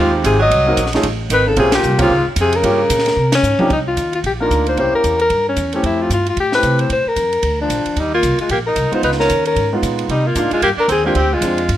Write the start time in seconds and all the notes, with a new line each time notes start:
Already playing: D#2 G#2 G#3 F4
0.00 C4 D#4 F4 G4
0.23 G#1 C3 G#4, kick, hi-hat pedal, ride
0.38 F#3 D#5
0.50 C2, kick, ride
0.67 A#3 C4 D#4 F#4 A#4
0.77 A#1, kick, hi-hat pedal, ride
0.86 snare
0.93 A3 C#4 D#4 F4 G#4, snare, ride
1.03 A1, kick, ride
1.29 G#1 D#3 B4, kick, hi-hat pedal, ride
1.47 C#3 A4
1.56 A#1 C3 A#3 C4 C#4 F4 G#4, kick, ride
1.72 A#2 G4, snare, ride
1.83 C2, hi-hat pedal
1.99 G#2 A#3 C4 C#4 F4 G4, kick, ride
2.10 C#2, kick
2.26 muted upright bass stroke
2.36 F2 C3, kick, hi-hat pedal, ride
2.41 G#4
2.53 C#3 A#4, ride
2.63 G2 G3 A#3 C#4 F4 G4, kick, ride
2.90 A#2, kick, hi-hat pedal, ride
2.99 snare
3.06 snare, ride
3.16 C3
3.32 C#4, snare, ride
3.43 G#2, hi-hat pedal
3.59 C3 F3 A#3 D4 D#4 G4, muted upright bass stroke, mid tom
3.70 C2 D#4, kick, ride
3.88 F4
3.96 D#2, kick, hi-hat pedal, ride
4.13 F4, ride
4.24 A#1 G4, kick, ride
4.40 A#3 D4 D#4 F4 A#4
4.50 D2, kick, hi-hat pedal, ride
4.66 C5, ride
4.77 C2 A#3 C#4 E4 G4 C5, kick, ride
4.93 A#4, muted upright bass stroke
5.04 E2, kick, hi-hat pedal, ride
5.19 A#4, ride
5.30 G2, kick, ride
5.48 C#4
5.56 E2, kick, hi-hat pedal, ride
5.72 A3 C4 C#4 E4 G4, ride
5.83 F2 E4, kick, ride
6.02 F4
6.10 G2 F4, kick, hi-hat pedal, ride
6.26 F4, ride
6.37 A2 G4, kick, ride
6.52 A3 C4 E4 G4 B4, snare
6.63 C3, kick, hi-hat pedal, ride
6.79 C5, ride
6.90 A#2 C5, kick, ride
7.05 A#4, muted upright bass stroke
7.16 F2, kick, hi-hat pedal, ride
7.33 ride
7.43 D2, kick, ride
7.61 F3 D4
7.69 A#1, kick, hi-hat pedal, ride
7.85 muted upright bass stroke, ride
7.96 D#2 G3 D#4, kick, ride
8.14 A#3 F4
8.23 C2, kick, hi-hat pedal, ride
8.38 G#3 F4, muted upright bass stroke, ride
8.49 A#1 A#3 G4, kick, ride
8.66 D#4 A#4
8.76 C2, kick, hi-hat pedal, ride
8.92 G#3 B3 D#4 F4 C5, muted upright bass stroke, ride
9.02 C#2 D#4 B4, kick, ride
9.12 snare
9.19 C#4 A#4, snare
9.29 D#2, kick, hi-hat pedal, ride
9.45 C#4 A#4, ride
9.56 G#2, kick, ride
9.73 G#3 B3 D#4 F4
9.82 A#2, kick, hi-hat pedal, ride
9.99 ride
10.09 C3 G3 D#4, kick, ride
10.25 A#3 F4
10.35 G#2 A#3 D4 D#4 F4, kick, hi-hat pedal, ride
10.51 G#3 F4, muted upright bass stroke, ride
10.62 G2 A#3 G4, kick, ride
10.77 D4 A#4, muted upright bass stroke
10.88 D#2 C4 G#4, kick, hi-hat pedal, ride
11.04 G#3 A#3 C4 D4 F4 G4
11.15 D2 C4 G4, kick, ride
11.33 G#3 F4
11.41 F2 G#3 C4 D4 F4, kick, hi-hat pedal, ride
11.58 ride
11.69 G2, kick, ride